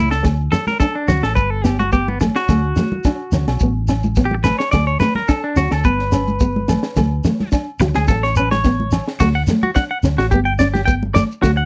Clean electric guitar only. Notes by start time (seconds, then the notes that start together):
Already playing: E4
0.11 A4
0.24 muted clean electric guitar stroke
0.52 A4
0.68 A#4
0.80 A4
0.95 D4
1.08 F#4
1.23 A4
1.35 B4
1.50 A4
1.64 G4
1.79 F#4
1.93 G4
2.08 B3
2.21 muted clean electric guitar stroke
2.36 F#4
4.25 G4
4.35 muted clean electric guitar stroke
4.44 B4
4.59 C#5
4.71 D5
4.87 C#5
5.00 B4
5.16 A#4
5.28 A4
5.44 D4
5.57 F#4
5.72 A4
5.85 B4
7.81 muted clean electric guitar stroke
7.96 G#4
8.08 A4
8.23 C#5
8.37 B4
8.51 C#5
9.20 F#4
9.35 F#5
9.63 F#4
9.76 F#5
9.91 F#5
10.18 F#4
10.31 G4
10.45 G5
10.59 D5
10.74 G4
10.86 G5
11.15 D5
11.42 F#4
11.57 F#5